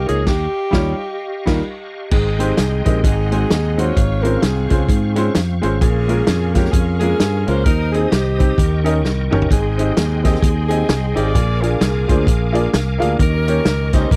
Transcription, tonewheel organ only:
0.00 0.26 A#4 medium
0.00 0.23 D#5 medium
0.00 2.09 F5 medium
0.00 2.09 C#6 medium
0.28 2.11 G4 medium
0.28 2.11 D#5 medium
2.13 3.02 G#4 medium
2.13 3.96 D#5 medium
2.13 3.04 G5 medium
2.13 3.95 C6 medium
3.03 3.95 G#4 medium
3.03 3.96 F#5 medium
3.97 5.80 C4 medium
3.97 7.63 F5 medium
3.97 7.63 C#6 medium
5.82 7.65 A#4 medium
7.66 8.58 C5 medium
7.66 11.32 D#5 medium
7.66 8.58 D#6 medium
8.59 9.50 A#4 medium
8.59 9.49 G5 medium
8.59 9.50 C#6 medium
9.50 11.33 G#4 medium
9.50 11.33 G5 medium
9.50 11.33 C6 medium
11.35 14.16 A#4 medium
11.35 13.18 F5 medium
11.35 13.18 G#5 medium
11.35 13.17 D6 medium
13.20 14.16 D#5 medium
13.20 14.16 C#6 medium

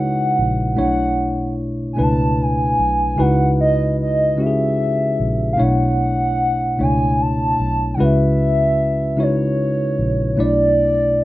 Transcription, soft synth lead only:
0.00 0.78 F#5 loud
0.80 1.55 F#5 loud
1.93 2.04 G#5 medium
2.02 2.44 A5 loud
2.42 3.23 G#5 loud
3.21 3.59 F#5 loud
3.61 3.97 D#5 medium
4.02 4.43 D#5 medium
4.42 5.53 E5 loud
5.53 5.63 F5 medium
5.62 6.84 F#5 loud
6.83 7.23 G#5 loud
7.21 7.96 A5 loud
7.94 8.05 F#5 medium
8.03 9.24 E5 loud
9.23 10.40 C#5 medium
10.43 11.24 D5 loud

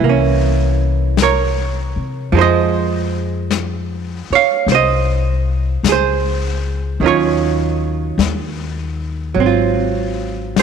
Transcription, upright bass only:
0.01 1.93 C2 medium
1.96 2.31 C3 soft
2.32 4.25 F2 medium
4.30 muted upright bass stroke soft
4.67 5.80 C2 medium
5.83 6.97 C#2 medium
7.00 8.14 D#2 medium
8.18 9.33 D#2 medium
9.36 10.62 G#1 medium

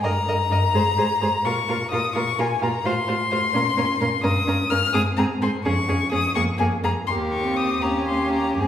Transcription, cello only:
0.03 0.11 G2 medium
0.27 0.35 G2 medium
0.51 0.59 G2 medium
0.74 0.82 G#2 medium
0.98 1.06 G#2 medium
1.21 1.29 G#2 medium
1.45 1.53 A#2 medium
1.69 1.77 A#2 medium
1.92 2.00 A#2 medium
2.16 2.24 A#2 medium
2.38 2.46 A#2 medium
2.62 2.70 A#2 medium
2.85 2.93 A2 medium
3.08 3.16 A2 medium
3.32 3.40 A2 medium
3.54 3.62 A#2 medium
3.77 3.85 A#2 medium
4.01 4.09 A#2 medium
4.24 4.32 G2 medium
4.47 4.55 G2 medium
4.71 4.79 G2 medium
4.94 5.02 G#2 medium
5.18 5.26 G#2 medium
5.42 5.50 G#2 medium
5.66 5.74 F2 medium
5.90 5.98 F2 medium
6.14 6.22 F2 medium
6.37 6.45 F2 medium
6.60 6.68 F2 medium
6.84 6.92 F2 medium
7.09 7.78 D#2 medium
7.83 8.61 D#2 medium
8.59 8.68 G#2 soft

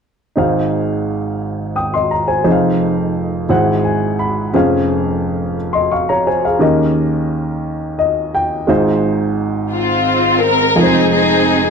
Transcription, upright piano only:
0.36 2.41 G#1 soft
0.36 2.41 G#2 soft
0.36 2.41 D#4 soft
0.36 2.41 G#4 soft
0.36 1.74 C5 soft
0.36 1.74 F5 medium
1.76 1.93 G5 soft
1.76 1.93 D#6 soft
1.94 2.11 D#5 soft
1.94 2.10 C6 soft
2.11 2.28 A#5 soft
2.28 2.43 C5 soft
2.28 2.61 G#5 soft
2.44 3.45 F1 soft
2.44 3.45 F2 medium
2.44 3.49 D#4 soft
2.44 3.48 G#4 soft
2.44 3.49 C5 soft
2.44 2.52 D#5 soft
2.52 3.53 F5 soft
3.49 4.50 G#1 medium
3.49 4.50 G#2 soft
3.49 4.53 E4 soft
3.49 4.53 G#4 soft
3.49 4.53 C5 soft
3.49 4.54 F#5 medium
3.84 4.17 G#5 soft
4.19 4.51 B5 soft
4.53 6.58 F1 soft
4.53 6.58 F2 medium
4.53 6.57 C#4 medium
4.53 5.56 G#4 soft
4.53 5.56 C5 soft
4.53 5.57 F5 medium
5.73 5.91 D#5 soft
5.73 5.90 C6 soft
5.92 6.09 F5 soft
5.92 6.08 C#6 soft
6.09 6.26 C#5 soft
6.09 6.26 A#5 soft
6.27 6.43 C5 soft
6.27 6.43 G#5 soft
6.45 6.78 G#4 soft
6.45 6.78 F5 soft
6.59 8.65 D#2 medium
6.59 8.65 D#3 medium
6.59 8.64 C#4 medium
6.59 8.64 G4 soft
6.59 8.65 A#4 soft
6.59 7.97 D#5 medium
7.99 8.32 D#5 medium
8.34 8.67 G5 medium
8.67 10.72 G#1 medium
8.67 10.72 G#2 medium
8.67 10.72 G#3 medium
8.67 10.72 D#4 medium
8.67 10.73 F4 medium
8.67 10.73 C5 medium
10.75 11.70 F1 soft
10.75 11.70 F2 soft
10.75 11.70 G#3 soft
10.75 11.70 D#4 soft
10.75 11.70 F4 soft
10.75 10.84 A#4 soft
10.84 11.70 C5 medium

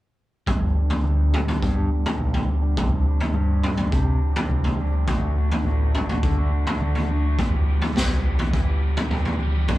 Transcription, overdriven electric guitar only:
0.47 1.01 G2 medium
0.47 1.02 D3 medium
0.47 0.75 G3 medium
0.47 0.75 B3 medium
0.47 0.77 D4 medium
0.47 0.78 G4 medium
0.75 0.93 G3 medium
0.75 0.91 B3 medium
0.75 0.90 D4 medium
0.75 0.89 G4 medium
0.90 1.04 G3 medium
0.90 1.03 B3 soft
0.90 1.05 D4 medium
0.90 1.05 G4 medium
1.03 1.61 G2 medium
1.03 1.62 D3 medium
1.03 1.32 G3 medium
1.03 1.32 B3 medium
1.03 1.34 D4 medium
1.03 1.35 G4 medium
1.32 1.48 G3 medium
1.32 1.47 B3 medium
1.32 1.47 D4 medium
1.32 1.45 G4 medium
1.46 1.77 G3 soft
1.46 1.76 B3 medium
1.46 1.76 D4 medium
1.46 1.74 G4 medium
1.75 2.06 G3 medium
1.75 2.05 B3 medium
1.75 2.05 D4 medium
1.75 2.03 G4 medium
2.04 2.18 G3 medium
2.04 2.19 B3 medium
2.04 2.20 D4 medium
2.04 2.20 G4 medium
2.18 2.75 G2 medium
2.18 2.75 D3 medium
2.18 2.45 G3 medium
2.18 2.46 B3 medium
2.18 2.48 D4 medium
2.18 2.48 G4 medium
2.46 2.64 G3 medium
2.46 2.62 B3 medium
2.46 2.63 D4 medium
2.46 2.61 G4 medium
2.62 2.76 G3 medium
2.62 2.76 B3 medium
2.62 2.78 D4 medium
2.62 2.75 G4 medium
2.76 3.33 C3 medium
2.76 3.04 G3 medium
2.76 3.05 C4 medium
2.76 3.07 D4 medium
2.76 3.07 G4 medium
3.05 3.34 G3 medium
3.05 3.21 C4 medium
3.05 3.20 D4 medium
3.05 3.18 G4 medium
3.19 3.35 C4 medium
3.19 3.36 D4 medium
3.19 3.37 G4 medium
3.34 3.92 C3 medium
3.34 3.62 G3 medium
3.34 3.63 C4 medium
3.34 3.65 D4 medium
3.34 3.65 G4 medium
3.63 4.06 G3 medium
3.63 3.79 C4 medium
3.63 3.79 D4 medium
3.63 3.76 G4 medium
3.77 4.07 C4 medium
3.77 4.06 D4 medium
3.77 4.04 G4 medium
4.05 4.35 C4 medium
4.05 4.35 D4 medium
4.05 4.32 G4 medium
4.33 4.50 C4 medium
4.33 4.52 D4 medium
4.33 4.51 G4 medium
4.49 5.05 C3 medium
4.49 4.76 G3 medium
4.49 4.78 C4 medium
4.49 4.80 D4 medium
4.49 4.80 G4 loud
4.78 5.05 G3 medium
4.78 4.94 C4 medium
4.78 4.94 D4 medium
4.78 4.91 G4 medium
4.92 5.06 C4 medium
4.92 5.07 D4 medium
4.92 5.05 G4 medium
5.05 5.34 D3 medium
5.05 5.35 A3 medium
5.05 5.37 D4 medium
5.05 5.37 F#4 loud
5.35 5.62 D3 medium
5.35 5.51 A3 medium
5.35 5.51 D4 medium
5.35 5.48 F#4 medium
5.49 5.64 A3 medium
5.49 5.66 D4 medium
5.49 5.65 F#4 medium
5.63 5.91 D3 medium
5.63 5.92 A3 medium
5.63 5.94 D4 medium
5.63 5.94 F#4 loud
5.92 6.36 D3 medium
5.92 6.10 A3 medium
5.92 6.09 D4 medium
5.92 6.06 F#4 medium
6.08 6.39 A3 soft
6.08 6.38 D4 medium
6.08 6.35 F#4 medium
6.37 6.68 A3 medium
6.37 6.67 D4 medium
6.37 6.64 F#4 medium
6.66 6.80 A3 medium
6.66 6.82 D4 medium
6.66 6.82 F#4 medium
6.80 7.08 D3 medium
6.80 7.09 A3 medium
6.80 7.10 D4 loud
6.80 7.11 F#4 medium
7.09 7.36 D3 medium
7.09 7.26 A3 medium
7.09 7.25 D4 medium
7.09 7.23 F#4 medium
7.24 7.38 A3 medium
7.24 7.40 D4 medium
7.24 7.37 F#4 medium
7.38 7.94 E2 medium
7.38 7.95 B2 medium
7.38 7.66 E3 medium
7.38 7.67 G3 medium
7.38 7.68 B3 medium
7.38 7.70 G4 medium
7.67 7.83 E3 medium
7.67 7.83 G3 medium
7.67 7.82 B3 medium
7.67 7.80 G4 medium
7.81 7.96 E3 medium
7.81 7.97 G3 medium
7.81 7.98 B3 medium
7.81 7.98 G4 medium
7.96 8.53 E2 medium
7.96 8.54 B2 medium
7.96 8.22 E3 medium
7.96 8.24 G3 medium
7.96 8.25 B3 medium
7.96 8.26 G4 medium
8.23 8.41 E3 medium
8.23 8.41 G3 medium
8.23 8.39 B3 medium
8.23 8.39 G4 medium
8.39 8.69 E3 soft
8.39 8.70 G3 medium
8.39 8.68 B3 medium
8.39 8.68 G4 medium
8.68 8.99 E3 medium
8.68 8.99 G3 medium
8.68 8.97 B3 medium
8.68 8.97 G4 medium
8.98 9.11 E3 medium
8.98 9.12 G3 medium
8.98 9.12 B3 medium
8.98 9.13 G4 medium
9.10 9.67 E2 medium
9.10 9.67 B2 medium
9.10 9.39 E3 medium
9.10 9.41 G3 medium
9.10 9.41 B3 medium
9.10 9.42 G4 medium
9.40 9.55 E3 medium
9.40 9.55 G3 medium
9.40 9.53 B3 medium
9.40 9.53 G4 medium
9.53 9.68 E3 medium
9.53 9.70 G3 medium
9.53 9.67 B3 medium
9.53 9.71 G4 medium
9.68 9.78 G2 medium
9.68 9.78 D3 medium
9.68 9.78 G3 medium
9.68 9.78 B3 medium
9.68 9.78 D4 medium
9.68 9.78 G4 medium

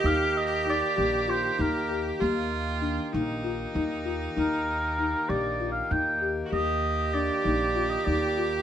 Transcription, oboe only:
0.06 0.39 F5 loud
0.37 0.68 D#5 medium
0.70 1.31 D5 medium
1.30 1.63 C5 medium
1.61 2.07 A#4 medium
4.39 5.31 A#4 medium
5.29 5.70 D5 medium
5.72 5.93 F5 medium
5.91 6.38 G5 medium
6.53 7.15 D#5 medium
7.14 7.91 D5 medium
7.90 8.06 D#5 medium
8.05 8.52 D5 medium

